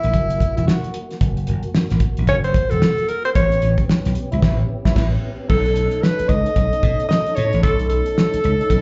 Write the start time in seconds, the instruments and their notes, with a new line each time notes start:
Already playing: tonewheel organ A#3 E4, alto saxophone E4
0.03 slap bass A#1, closed hi-hat
0.14 slap bass F#1, tonewheel organ F#4, kick, closed hi-hat
0.30 closed hi-hat
0.40 kick, closed hi-hat
0.57 slap bass E1, alto saxophone E4, closed hi-hat
0.67 alto saxophone F#4, snare
0.84 closed hi-hat
0.94 closed hi-hat
1.10 snare, closed hi-hat
1.21 slap bass F#1, kick, closed hi-hat
1.37 closed hi-hat
1.47 slap bass F#1, closed hi-hat
1.63 closed hi-hat
1.75 muted slap bass stroke, snare
1.90 slap bass A1, snare, closed hi-hat
2.00 kick, closed hi-hat
2.17 slap bass A#1, closed hi-hat
2.27 slap bass F#1, alto saxophone C#5, kick, closed hi-hat
2.44 alto saxophone C5, closed hi-hat
2.54 kick, closed hi-hat
2.70 slap bass E1, alto saxophone A4, closed hi-hat
2.82 snare
2.98 closed hi-hat
3.08 alto saxophone A#4, closed hi-hat
3.25 alto saxophone C5, closed hi-hat
3.35 slap bass A1, tonewheel organ B3 C#4 G4, alto saxophone C#5, kick, closed hi-hat
3.52 closed hi-hat
3.62 slap bass A1, closed hi-hat
3.78 kick, closed hi-hat
3.89 muted slap bass stroke, snare
4.05 slap bass B1, snare, closed hi-hat
4.15 closed hi-hat
4.32 slap bass C#2, trombone E4, closed hi-hat
4.42 slap bass A1, trombone E4, kick, snare, crash
4.85 slap bass A1, trombone E4, kick, snare
4.96 slap bass A1, trombone E4, kick, snare, crash
5.49 slap bass B1, tonewheel organ A3 C#4 D#4 A4, alto saxophone A4, kick, crash
5.66 closed hi-hat
5.76 closed hi-hat
5.91 closed hi-hat
6.03 alto saxophone B4, snare
6.19 muted slap bass stroke, closed hi-hat
6.29 slap bass C#2, alto saxophone D#5, kick, closed hi-hat
6.46 closed hi-hat
6.56 slap bass B1, kick, closed hi-hat
6.73 closed hi-hat
6.83 slap bass B2, kick, closed hi-hat
7.00 closed hi-hat
7.09 alto saxophone D#5, snare
7.26 closed hi-hat
7.36 slap bass A2, alto saxophone C#5, closed hi-hat
7.53 slap bass A1, closed hi-hat
7.62 slap bass B1, alto saxophone A4, kick, closed hi-hat
7.79 closed hi-hat
7.89 alto saxophone A4, closed hi-hat
8.06 closed hi-hat
8.18 snare
8.34 muted slap bass stroke, closed hi-hat
8.44 slap bass C#2, closed hi-hat
8.61 closed hi-hat
8.70 slap bass B1, kick, closed hi-hat